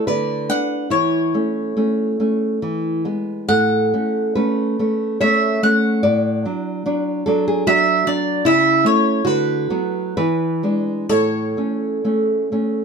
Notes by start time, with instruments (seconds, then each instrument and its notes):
0.07 nylon-string guitar D3 B4, mandolin D5
0.49 nylon-string guitar B3 D4, mandolin F#5
0.90 nylon-string guitar E3 E4, mandolin C#5
1.34 nylon-string guitar A3 C#4
1.77 nylon-string guitar A3 C#4
2.20 nylon-string guitar A3 C#4
2.62 nylon-string guitar E3
3.05 nylon-string guitar G#3 B3
3.48 nylon-string guitar A2 A4, mandolin F#5
3.94 nylon-string guitar A3 C#4
4.35 nylon-string guitar A3 C#4 B4
4.79 nylon-string guitar A3 C#4
5.21 nylon-string guitar A3 C#4 C#5, mandolin E5
5.63 nylon-string guitar A3 C#4, mandolin F#5
6.03 nylon-string guitar A2 D5
6.45 nylon-string guitar F#3 D4
6.86 nylon-string guitar F#3 D4
7.26 nylon-string guitar F#3 D4 A4
7.48 nylon-string guitar G#4
7.67 nylon-string guitar F#3 D4 F#4, mandolin E5
8.07 nylon-string guitar F#3 D4, mandolin D5
8.45 nylon-string guitar C#3 E4, mandolin E5
8.84 nylon-string guitar A3 C#4, mandolin C#5
9.25 nylon-string guitar D3 F#4, mandolin B4
9.70 nylon-string guitar F#3 B3
10.17 nylon-string guitar E3 B4
10.63 nylon-string guitar G#3 D4
11.09 nylon-string guitar A2 A4, mandolin C#5
11.57 nylon-string guitar A3 C#4
12.04 nylon-string guitar A3 C#4
12.52 nylon-string guitar A3 C#4